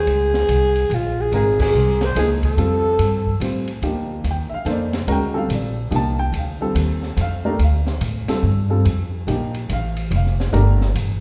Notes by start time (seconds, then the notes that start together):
Already playing: G#4
0.07 C#2, ride
0.34 snare
0.48 C2, hi-hat pedal, ride
0.75 ride
0.90 A#1, ride
0.94 F4
1.21 G#4
1.32 G#1 G#3 C4 F4 G#4 A#4, ride
1.59 G#4, kick, crash
1.73 C2, hi-hat pedal
2.01 C5, snare, ride
2.15 C#2 F3 A#3 D#4 G#4, hi-hat pedal, ride
2.43 A4, kick, ride
2.57 F2 G3 C4 F4 A4, ride
2.99 G2, hi-hat pedal, ride
3.26 kick
3.40 A2 G3 C4 F4 C5, hi-hat pedal, ride
3.68 ride
3.82 D2 F3 A#3 D#4 G4, ride
4.24 D#2, hi-hat pedal, ride
4.31 G5
4.49 E5, muted upright bass stroke
4.54 F5
4.65 F2 A#3 D#4 A4 C5, hi-hat pedal, ride
4.71 D5
4.93 snare, ride
5.07 D2 G#3 C#4 F#4 A#4, ride
5.12 G5
5.34 G3 C4 F4 A4 F5
5.49 A#1, hi-hat pedal, ride
5.54 D5
5.91 C2 F3 A#3 D#4 G4, ride
5.96 A5
6.19 G5
6.32 D2, ride
6.38 F5
6.61 G3 C4 F4 A4
6.75 D#2, hi-hat pedal, ride
7.03 snare
7.17 F2, hi-hat pedal, ride
7.21 F5
7.45 A3 D4 G4 A#4
7.59 D2 F5, ride
7.87 snare
8.01 A2, hi-hat pedal, ride
8.28 G3 C4 F4 A4, muted upright bass stroke, snare, ride
8.43 G2
8.70 G3 C4 F4 A4
8.85 F2, ride
9.27 A#1 F3 A#3 D#4 G4, hi-hat pedal, ride
9.54 ride
9.69 A1 F5, hi-hat pedal, ride
9.97 ride
10.11 F1, ride
10.16 F5
10.26 snare
10.40 snare
10.53 G1 A3 D4 G4 A#4, hi-hat pedal, ride
10.81 snare
10.94 A1, hi-hat pedal, ride